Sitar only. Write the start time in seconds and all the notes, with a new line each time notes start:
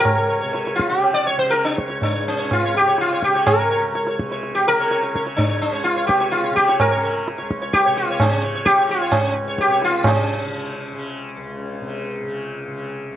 Already playing: C#5
0.00 A#4
0.15 C#5
0.29 C#5
0.41 C#5
0.53 C#5
0.65 C#5
0.75 F4
0.89 G4
1.14 D5
1.27 C#5
1.39 C5
1.50 A#4
1.64 D4
1.77 C#5
1.88 C#5
2.03 D4
2.13 C#5
2.28 C#4
2.39 C#5
2.53 F4
2.64 C#5
2.77 G4
2.87 C#5
3.01 F4
3.13 C#5
3.24 G4
3.35 C#5
3.46 A#4
3.59 C#5
3.70 C#5
3.95 C#5
4.08 C#5
4.32 C#5
4.55 G4
4.68 A#4
4.80 C#5
4.90 C#5
5.03 C#5
5.16 C#5
5.26 C#5
5.36 D4
5.49 C#5
5.62 C#4
5.73 C#5
5.84 F4
5.96 C#5
6.07 G4
6.20 C#5
6.32 F4
6.44 C#5
6.56 G4
6.68 C#5
6.81 A#4
6.91 C#5
7.03 C#5
7.38 C#5
7.62 C#5
7.73 G4
7.85 C#5
7.97 F4
8.10 C#5
8.21 C#4
8.31 C#5
8.45 C#5
8.55 C#5
8.65 G4
8.78 C#5
8.91 F4
9.02 C#5
9.11 C#4
9.25 C#5
9.48 C#5
9.61 G4
9.71 C#5
9.85 F4
10.07 C#4
11.69 D4
12.10 C#4
12.61 D4
13.01 C#4